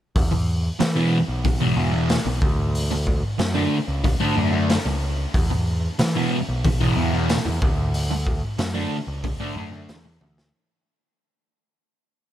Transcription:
0.16 0.68 E2 medium
0.16 kick loud
0.16 open hi-hat medium
0.32 muted distorted electric guitar stroke soft
0.79 1.20 E3 medium
0.79 muted distorted electric guitar stroke soft
0.79 snare loud
0.79 open hi-hat soft
0.95 1.18 E2 medium
0.95 1.17 B2 medium
0.95 1.17 E3 medium
1.28 1.68 B1 medium
1.45 muted distorted electric guitar stroke soft
1.45 kick loud
1.45 open hi-hat soft
1.60 1.76 E2 medium
1.60 1.76 B2 medium
1.60 1.77 E3 medium
1.77 2.17 E2 medium
1.77 1.93 E2 medium
1.77 1.93 B2 medium
1.77 1.92 E3 medium
1.93 2.15 E2 medium
1.93 2.15 B2 medium
1.93 2.14 E3 medium
2.09 snare loud
2.09 open hi-hat medium
2.25 2.39 B1 medium
2.25 muted distorted electric guitar stroke soft
2.42 3.21 D2 loud
2.42 kick loud
2.75 open hi-hat soft
2.91 muted distorted electric guitar stroke soft
3.07 kick medium
3.39 3.66 F#2 medium
3.39 muted distorted electric guitar stroke soft
3.39 snare medium
3.39 open hi-hat medium
3.55 3.77 D3 medium
3.55 3.77 A3 medium
3.55 3.76 D4 medium
3.88 4.15 C#2 medium
4.04 muted distorted electric guitar stroke soft
4.04 kick loud
4.04 open hi-hat soft
4.20 4.34 D3 medium
4.20 4.35 A3 medium
4.20 4.35 D4 medium
4.35 4.77 F#2 medium
4.35 4.52 D3 medium
4.35 4.52 A3 loud
4.35 4.51 D4 medium
4.52 4.74 D3 medium
4.52 4.74 A3 medium
4.52 4.74 D4 medium
4.70 snare loud
4.70 open hi-hat soft
4.85 5.25 C#2 medium
4.85 muted distorted electric guitar stroke soft
5.34 5.87 E2 medium
5.34 kick loud
5.34 open hi-hat soft
5.50 muted distorted electric guitar stroke soft
5.99 6.39 E3 medium
5.99 muted distorted electric guitar stroke soft
5.99 snare loud
5.99 open hi-hat medium
6.15 6.37 E2 medium
6.15 6.37 B2 medium
6.15 6.37 E3 medium
6.49 6.88 B1 medium
6.64 muted distorted electric guitar stroke soft
6.64 kick loud
6.64 open hi-hat medium
6.80 6.96 E2 medium
6.80 6.96 B2 medium
6.80 6.97 E3 medium
6.97 7.36 E2 medium
6.97 7.13 E2 medium
6.97 7.13 B2 medium
6.97 7.12 E3 medium
7.13 7.35 E2 medium
7.13 7.35 B2 medium
7.13 7.34 E3 medium
7.29 snare loud
7.29 open hi-hat medium
7.45 7.59 E2 medium
7.45 muted distorted electric guitar stroke medium
7.62 8.42 D2 medium
7.62 kick loud
7.94 open hi-hat medium
8.11 muted distorted electric guitar stroke soft
8.27 kick medium
8.58 8.85 F#2 medium
8.58 muted distorted electric guitar stroke soft
8.58 snare loud
8.58 open hi-hat medium
8.75 8.97 D3 medium
8.75 8.97 A3 medium
8.75 8.96 D4 medium
9.07 9.34 C#2 medium
9.24 muted distorted electric guitar stroke soft
9.24 kick loud
9.24 open hi-hat soft
9.40 9.54 D3 medium
9.40 9.55 A3 medium
9.40 9.56 D4 medium
9.56 9.86 F#2 medium
9.56 9.72 D3 medium
9.56 9.71 A3 medium
9.56 9.70 D4 loud
9.72 9.94 D3 medium
9.72 9.94 A3 medium
9.72 9.93 D4 medium
9.89 10.18 E2 medium
9.89 snare loud
9.89 open hi-hat soft
10.05 muted distorted electric guitar stroke medium
10.21 10.51 D2 medium
10.21 high tom medium
10.38 snare medium

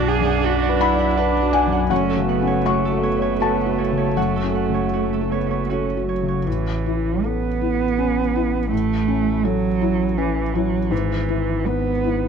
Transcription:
0.00 1.87 B1 medium
0.00 1.92 B1 medium
0.00 0.35 D4 medium
0.00 1.92 D4 medium
0.00 0.12 F#4 medium
0.00 0.43 B4 medium
0.00 0.61 D5 medium
0.00 0.24 F#5 medium
0.00 1.77 B5 medium
0.00 0.77 D6 medium
0.08 0.47 G#4 medium
0.21 0.59 F#2 medium
0.26 0.79 F#5 medium
0.44 0.83 F#4 medium
0.44 1.16 B4 medium
0.62 1.93 D5 medium
0.69 1.08 B4 medium
0.81 1.18 E4 medium
0.81 0.98 F#5 medium
0.81 1.49 B5 medium
0.94 1.32 D5 medium
0.99 1.53 F#5 medium
1.17 1.89 D4 medium
1.17 1.93 B4 medium
1.17 1.57 B4 medium
1.42 1.81 F#4 medium
1.53 1.71 F#5 medium
1.53 1.87 G#5 medium
1.67 1.90 F#2 soft
1.72 2.28 F#5 medium
1.90 6.46 F#1 medium
1.90 4.13 F#2 medium
1.90 6.26 A3 medium
1.90 2.27 C#4 medium
1.90 2.64 F#4 medium
1.90 2.62 F#5 medium
2.10 2.84 A4 medium
2.17 2.57 C#3 soft
2.28 2.68 B3 medium
2.28 4.54 F#5 medium
2.42 2.81 C#4 soft
2.47 3.02 C#5 medium
2.66 3.04 A3 medium
2.66 3.39 F#4 medium
2.66 3.06 F#4 soft
2.66 3.36 C#6 medium
2.85 4.35 A4 medium
2.92 3.31 A4 soft
3.03 4.16 B3 medium
3.03 3.21 C#5 soft
3.17 3.56 C#5 soft
3.22 3.77 C#5 soft
3.40 4.16 F#4 medium
3.40 3.81 A4 soft
3.40 4.13 A5 medium
3.66 4.06 F#4 soft
3.78 3.96 C#5 soft
3.92 4.32 C#3 soft
3.97 4.73 C#5 soft
4.16 6.43 F#2 soft
4.16 4.84 A3 soft
4.16 4.92 F#4 medium
4.16 5.66 F#5 medium
4.36 5.12 A4 soft
4.43 4.84 C#4 soft
4.55 6.50 F#5 soft
4.69 5.09 C#3 soft
4.74 5.31 C#5 soft
4.93 5.33 A3 soft
4.93 5.69 F#4 soft
4.93 5.35 F#4 soft
5.13 9.03 A4 soft
5.21 5.61 A4 soft
5.31 5.71 B3 soft
5.31 5.49 C#5 soft
5.47 5.86 C#5 soft
5.51 6.08 C#5 soft
5.69 6.07 C#4 medium
5.69 6.50 F#4 soft
5.69 6.12 A4 soft
5.97 6.37 F#4 soft
6.08 6.48 F#3 soft
6.08 6.27 C#5 soft
6.22 6.47 C#3 soft
6.28 10.18 C#5 soft
6.46 10.92 A1 medium
6.46 8.68 A2 soft
6.46 7.26 E3 medium
6.86 7.46 E4 soft
7.24 8.71 B3 medium
7.24 7.84 A4 soft
7.61 8.21 E4 soft
7.98 8.57 C#4 soft
8.35 8.94 E4 soft
8.71 10.87 A2 medium
8.71 9.46 A3 medium
9.08 9.67 C#4 soft
9.45 10.19 F#3 medium
9.45 10.03 A4 medium
9.81 10.40 E4 soft
10.18 10.55 E3 medium
10.18 10.77 C#4 soft
10.54 10.92 F#3 medium
10.54 10.92 E4 soft
10.91 12.28 G#1 medium
10.91 12.28 G#2 medium
10.91 11.68 E3 medium
11.29 11.89 E4 soft
11.66 12.28 B3 medium
11.66 12.26 B4 soft
12.04 12.28 E4 soft

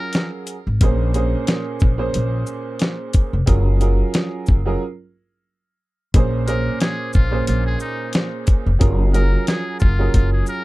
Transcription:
0.00 0.54 F#3 loud
0.00 0.54 C#4 medium
0.00 0.54 F4 medium
0.00 0.55 G#4 medium
0.00 0.30 A#4 medium
0.00 0.55 A#4 loud
0.13 snare loud
0.13 closed hi-hat medium
0.47 closed hi-hat medium
0.47 shaker medium
0.67 0.78 G#1 medium
0.81 1.34 A#1 loud
0.81 1.12 A#2 loud
0.81 1.13 A#3 medium
0.81 1.13 C#4 medium
0.81 1.13 G#4 medium
0.81 1.13 C5 loud
0.81 kick loud
0.81 closed hi-hat loud
1.14 1.92 A#2 loud
1.14 1.92 A#3 medium
1.14 1.92 C#4 medium
1.14 1.93 G#4 medium
1.14 1.93 C5 loud
1.14 closed hi-hat soft
1.14 shaker medium
1.47 snare loud
1.47 closed hi-hat medium
1.80 2.08 A#1 medium
1.80 kick loud
1.80 shaker soft
1.98 3.36 A#2 loud
1.98 3.36 A#3 medium
1.98 3.37 C#4 medium
1.98 3.37 G#4 medium
1.98 3.37 C5 loud
2.14 2.41 A#1 loud
2.14 closed hi-hat medium
2.47 shaker medium
2.79 snare loud
2.79 closed hi-hat medium
3.14 kick medium
3.14 closed hi-hat medium
3.14 shaker medium
3.33 3.45 F1 medium
3.46 4.00 F#1 loud
3.46 3.78 F#3 medium
3.46 3.78 C#4 medium
3.46 3.78 F4 medium
3.46 3.78 G#4 medium
3.46 3.78 A#4 loud
3.46 kick loud
3.46 closed hi-hat loud
3.80 4.58 F#3 loud
3.80 4.58 C#4 medium
3.80 4.59 F4 medium
3.80 4.59 G#4 medium
3.80 4.59 A#4 loud
3.80 closed hi-hat medium
3.80 shaker medium
4.14 snare loud
4.14 closed hi-hat medium
4.46 4.75 F#1 medium
4.46 kick loud
4.46 shaker soft
4.65 4.81 F#3 medium
4.65 4.81 C#4 medium
4.65 4.81 F4 medium
4.65 4.81 G#4 medium
4.65 4.82 A#4 loud
6.14 6.67 A#1 loud
6.14 6.46 A#2 loud
6.14 6.46 A#3 medium
6.14 6.46 C#4 medium
6.14 6.46 G#4 medium
6.14 6.46 C5 loud
6.14 kick loud
6.14 closed hi-hat loud
6.47 7.25 A#2 loud
6.47 7.25 A#3 medium
6.47 7.25 C#4 medium
6.47 7.26 G#4 medium
6.47 6.78 A#4 medium
6.47 7.26 C5 loud
6.47 closed hi-hat medium
6.47 shaker medium
6.80 7.11 G#4 medium
6.80 snare loud
6.80 closed hi-hat medium
7.13 7.41 A#1 medium
7.13 7.44 F4 medium
7.13 kick loud
7.13 shaker soft
7.31 8.69 A#2 loud
7.31 8.70 A#3 medium
7.31 8.70 C#4 medium
7.31 8.70 G#4 medium
7.31 8.70 C5 loud
7.47 7.74 A#1 loud
7.47 7.64 F4 medium
7.47 closed hi-hat medium
7.66 7.80 G#4 medium
7.80 8.11 D#4 medium
7.80 shaker medium
8.13 snare loud
8.13 closed hi-hat medium
8.47 kick medium
8.47 closed hi-hat medium
8.47 shaker medium
8.66 8.78 F1 medium
8.79 9.34 F#1 loud
8.79 9.11 F#3 medium
8.79 9.11 C#4 medium
8.79 9.11 F4 medium
8.79 9.11 G#4 medium
8.79 9.12 A#4 loud
8.79 kick loud
8.79 closed hi-hat loud
9.13 9.91 F#3 medium
9.13 9.91 C#4 medium
9.13 9.92 F4 medium
9.13 9.92 G#4 medium
9.13 9.44 A#4 medium
9.13 9.92 A#4 loud
9.13 closed hi-hat soft
9.13 shaker medium
9.47 9.78 G#4 medium
9.47 snare loud
9.47 closed hi-hat medium
9.80 10.08 F#1 medium
9.80 10.10 F4 medium
9.80 kick loud
9.80 shaker soft
9.99 10.64 F#3 loud
9.99 10.64 C#4 medium
9.99 10.64 F4 medium
9.99 10.64 G#4 medium
9.99 10.64 A#4 loud
10.14 10.41 F#1 loud
10.14 10.31 F4 medium
10.14 kick medium
10.14 closed hi-hat medium
10.33 10.46 G#4 medium
10.46 10.64 A#4 loud
10.46 shaker medium

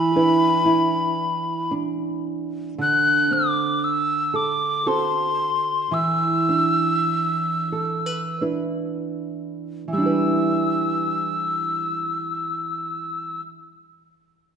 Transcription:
0.00 2.78 E3 medium
0.00 1.74 B5 medium
0.16 1.71 D4 soft
0.16 0.64 E4 soft
0.16 2.90 B4 medium
0.65 2.89 E4 medium
1.71 3.30 D4 soft
2.78 5.91 D3 medium
2.78 3.35 F#6 medium
3.31 4.85 C4 soft
3.31 3.86 D6 medium
3.84 4.37 E6 medium
4.34 4.85 A4 medium
4.34 4.90 D6 medium
4.86 6.04 C4 soft
4.86 6.04 F#4 soft
4.86 6.04 A4 medium
4.86 5.95 C6 medium
5.91 9.87 E3 medium
5.91 8.43 E6 medium
6.49 8.41 D4 soft
7.72 8.06 A4 soft
8.06 8.41 B4 soft
8.41 9.97 D4 soft
8.41 10.01 E4 soft
8.41 10.06 B4 soft
9.88 13.40 E3 soft
9.93 13.45 G3 soft
9.93 13.41 E6 medium
9.98 13.50 D4 soft
9.98 13.54 E4 medium
10.06 13.58 B4 soft

